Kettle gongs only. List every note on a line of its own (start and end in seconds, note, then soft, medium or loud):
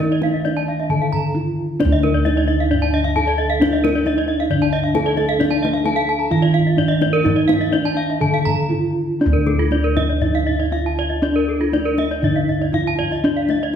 0.00 0.41 D#3 medium
0.00 0.44 D#4 medium
0.45 0.53 D#4 soft
0.90 2.21 D3 medium
1.35 1.43 D#4 soft
1.80 3.11 D4 medium
1.85 4.48 D2 medium
2.25 2.33 D#4 soft
3.16 3.24 D#4 soft
3.61 4.92 D4 medium
4.06 4.14 D#4 soft
4.51 5.82 D3 medium
4.96 5.04 D#4 soft
5.41 6.74 D4 medium
5.85 5.93 D#4 soft
6.31 7.69 D#3 medium
6.77 6.85 D#4 soft
7.25 7.72 D#4 medium
7.73 7.81 D#4 soft
8.21 9.67 D3 medium
8.70 8.78 D#4 soft
9.21 10.68 D4 medium
9.26 12.22 D2 medium
9.72 9.80 D#4 soft
10.72 10.80 D#4 soft
11.22 12.70 D4 medium
11.72 11.80 D#4 soft
12.23 13.70 D3 medium
12.73 12.81 D#4 soft
13.24 13.76 D4 medium